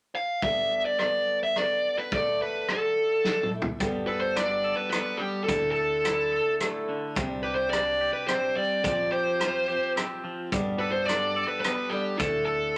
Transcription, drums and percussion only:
0.42 kick medium
0.99 cross-stick medium
1.56 cross-stick medium
2.12 kick loud
2.69 cross-stick medium
3.24 snare soft
3.43 mid tom soft
3.62 floor tom medium
3.80 kick loud
3.80 closed hi-hat medium
4.36 cross-stick medium
4.36 closed hi-hat soft
4.92 cross-stick medium
4.92 closed hi-hat soft
5.48 kick loud
5.48 closed hi-hat medium
6.05 cross-stick medium
6.05 closed hi-hat medium
6.60 cross-stick medium
6.60 closed hi-hat medium
7.16 kick loud
7.16 closed hi-hat medium
7.73 cross-stick medium
7.73 closed hi-hat soft
8.28 cross-stick medium
8.28 closed hi-hat soft
8.84 kick loud
8.84 closed hi-hat medium
9.40 cross-stick medium
9.40 closed hi-hat soft
9.97 cross-stick medium
9.97 closed hi-hat soft
10.52 kick loud
10.52 closed hi-hat medium
11.09 cross-stick medium
11.09 closed hi-hat medium
11.64 cross-stick medium
11.64 closed hi-hat medium
12.20 kick loud
12.20 closed hi-hat medium

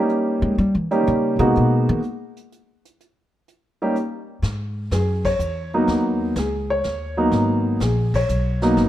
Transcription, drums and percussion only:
0.09 closed hi-hat soft
0.58 closed hi-hat soft
0.91 closed hi-hat soft
1.07 closed hi-hat soft
1.40 closed hi-hat soft
1.55 closed hi-hat soft
2.03 closed hi-hat soft
2.36 closed hi-hat soft
2.52 closed hi-hat soft
2.85 closed hi-hat soft
3.00 closed hi-hat soft
3.48 closed hi-hat soft
3.96 closed hi-hat medium
4.43 brush sweep soft
4.43 snare soft
4.92 snare medium
4.92 hi-hat pedal medium
5.25 kick medium
5.25 crash medium
5.40 hi-hat pedal medium
5.88 brush sweep soft
5.88 snare soft
6.36 snare medium
6.36 hi-hat pedal medium
6.84 snare soft
7.32 brush sweep soft
7.32 snare soft
7.81 snare medium
7.81 hi-hat pedal medium
8.14 kick medium
8.14 crash medium
8.29 hi-hat pedal medium
8.62 snare soft
8.77 brush sweep soft
8.77 snare soft

